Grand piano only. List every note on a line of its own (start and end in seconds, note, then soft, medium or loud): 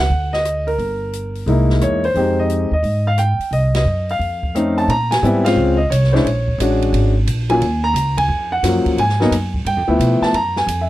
0.00 0.34 F#5 medium
0.33 0.68 D#5 medium
0.67 1.65 A#4 medium
1.47 1.99 G#3 medium
1.47 1.99 A#3 medium
1.47 1.99 D#4 soft
1.47 2.00 E4 medium
1.82 2.04 C#5 medium
2.05 2.39 C5 medium
2.15 2.67 G#3 soft
2.15 2.68 C4 soft
2.15 2.68 D#4 soft
2.15 2.68 G4 medium
2.39 2.72 D#5 medium
2.73 3.08 D#5 medium
3.07 3.18 F5 medium
3.18 3.50 G5 medium
3.53 3.73 D#5 medium
3.75 4.10 D#5 medium
4.11 4.74 F5 medium
4.55 4.89 A3 medium
4.55 4.89 C4 soft
4.55 4.89 C#4 soft
4.55 4.89 D#4 medium
4.78 4.90 A5 medium
4.90 5.12 A#5 loud
5.11 5.43 G#5 medium
5.23 5.43 G3 medium
5.23 5.43 B3 medium
5.23 5.43 C4 medium
5.23 5.44 E4 medium
5.45 5.75 G#3 medium
5.45 5.75 C4 medium
5.45 5.75 C#4 medium
5.45 5.76 F4 medium
5.45 5.80 F5 medium
5.77 5.89 D#5 medium
5.90 6.13 C#5 medium
6.12 6.24 G#3 medium
6.12 6.24 C#4 medium
6.12 6.24 D4 medium
6.12 6.25 E4 medium
6.12 6.25 C5 medium
6.24 6.77 C#5 medium
6.60 7.11 G#3 medium
6.60 7.12 C#4 medium
6.60 7.12 D4 medium
6.60 7.12 F#4 medium
7.49 7.60 F#3 medium
7.49 7.60 A#3 medium
7.49 7.61 C#4 medium
7.49 7.61 F4 medium
7.49 7.85 G#5 medium
7.84 8.15 A#5 loud
8.18 8.49 G#5 loud
8.52 8.99 F#5 medium
8.63 8.98 F3 medium
8.63 8.97 F#3 medium
8.63 8.98 A#3 medium
8.63 8.98 C#4 medium
8.99 9.51 G#5 medium
9.20 9.31 F#3 medium
9.20 9.31 A#3 medium
9.20 9.31 B3 medium
9.20 9.31 D#4 medium
9.67 10.24 G5 medium
9.87 10.31 F3 medium
9.87 10.31 A3 medium
9.87 10.31 B3 medium
9.87 10.32 E4 medium
10.22 10.34 A5 medium
10.35 10.55 A#5 medium
10.57 10.82 G#5 medium
10.81 10.89 E5 medium